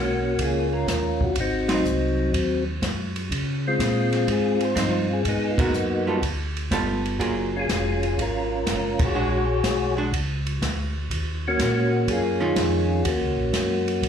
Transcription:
Already playing: B1 A#3 C#4 F#4
0.39 C#2 C#4 F4 G#4, kick, ride
0.73 A#4
0.88 D#2 A#4, kick, snare, hi-hat pedal, ride
1.21 F#4, kick
1.36 G#1, kick, ride
1.40 C4 D#4 F#4
1.68 F#3 C4 D#4, snare, ride
1.73 F#3 C4 D#4
1.84 C2, hi-hat pedal
2.33 D#2, kick, ride
2.82 F#2, kick, snare, hi-hat pedal, ride
3.16 ride
3.31 C#3, kick, ride
3.67 G#3 C4 F4
3.79 A#2, kick, snare, hi-hat pedal, ride
4.12 snare, ride
4.28 G#2 C4 F4 G#4, kick, ride
4.61 ride
4.65 C5
4.75 G2 F3 C4 D#4, kick, snare, hi-hat pedal, ride
4.80 C5
5.13 G#4
5.25 G#2 D#4, kick, ride
5.29 B3 G#4
5.51 F4
5.58 G#3 A#3 B3 F#4 A#4, kick, ride
5.72 F#2, hi-hat pedal
6.07 G3 B3 F4 A4
6.22 D2, kick, ride
6.57 ride
6.71 G1 G3 B3 F4 A4, kick, snare, hi-hat pedal, ride
7.06 ride
7.19 F#1 F#3 A#3 F4 G#4, kick, ride
7.56 C#4 F4 G#4
7.68 F1, kick, snare, hi-hat pedal, ride
8.03 ride
8.18 G#1 C#4 F4, kick, ride
8.22 A#4
8.66 F#1 A#4, kick, snare, hi-hat pedal, ride
8.99 F#1, kick, ride
9.04 F#4 G#4 C#5
9.15 A#1 G#3 D4 F#4
9.64 B1, kick, snare, hi-hat pedal, ride
9.97 G#3 D4 F#4
10.13 C#2, kick, ride
10.47 ride
10.62 D2, kick, snare, hi-hat pedal, ride
11.10 D#2, kick, ride
11.48 A#3 C#4 F#4
11.59 A#2, kick, snare, hi-hat pedal, ride
12.08 F#2 G#4, kick, ride
12.13 C#4 F4
12.41 D#3 C#4 F4
12.56 F2, kick, snare, hi-hat pedal, ride
13.04 D#2 A#3 C#4 F#4, kick, ride
13.21 C#2
13.36 A#1
13.53 F#2, kick, snare, hi-hat pedal, ride
13.88 ride
14.02 F2, kick, ride

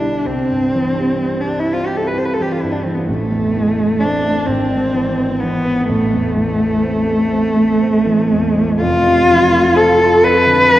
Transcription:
Already playing: B1 B2 D3 D4
0.00 G3
0.26 C2 C4
0.50 G2
0.74 E3
0.98 G3
1.22 C4
1.41 D4
1.46 G3
1.59 E4
1.70 C4 F4
1.86 G4
1.93 G3 A4
2.07 B4
2.17 C4 C5
2.25 B4
2.34 A4
2.40 E3 G4
2.52 F4
2.62 G2 E4
2.72 D4
2.84 E3 C4
2.94 B3
3.08 A1 A3
3.32 E2
3.57 E3
3.79 A3
3.99 C4 D4
4.25 A3
4.46 G#1 C4
4.72 G#2
4.94 E3
5.19 B3
5.40 E3 B3
5.65 B3
5.87 A1 A3
6.12 E2
6.37 E3
6.59 A3
6.83 C4
7.07 A3
7.31 C4
7.55 A3
7.81 C4
8.06 E3
8.31 E2
8.57 E3
8.80 F1 F2 F4
9.07 C3
9.29 F3
9.52 A3
9.76 C4 A4
9.99 F4
10.23 F2 B4
10.46 D3
10.70 F3

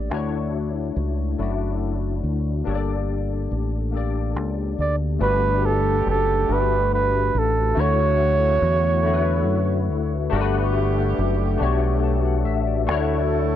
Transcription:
Already playing: A1 A#3 D4 G4 A4 C#5 D5
0.10 D2 A3 D4 E4 F#4
0.14 C#5
0.96 C#2
1.38 F#1 A3 D4 E4 F#4
1.43 D5
2.23 D2
2.64 G1 A#3 D4 G4 A4
2.69 C#5
2.75 D5
3.51 A1
3.91 A#3 D4 G4 A4
3.97 D5
4.36 C#2
4.79 D2 D5
5.19 G1 D3 G3 A3 B3 D4 F#4 G4 B4
5.24 B4
5.66 A4
6.06 F#1
6.10 A4
6.48 G1 A3 D4 F#4 G4 A4
6.53 B4
6.94 B4
7.35 A1
7.39 A4
7.75 D2 C#3 D3 F#3 A3 E4 F#4
7.79 C#5
8.62 E2
9.02 D3 A3 E4
9.06 F#4 A4
9.13 B4
9.46 F#2
9.90 D2
10.29 G1 D3 G3 A3 B3 D4 F#4 G4
10.34 A#4
10.41 B4
11.19 F#1
11.58 B1 A3 D4 F#4 G4
11.62 C#5
12.03 A5
12.25 F#5
12.45 A1 E5
12.67 D5
12.87 D2 F#3 A3 D4 E4 F#4 A4
12.91 C#5

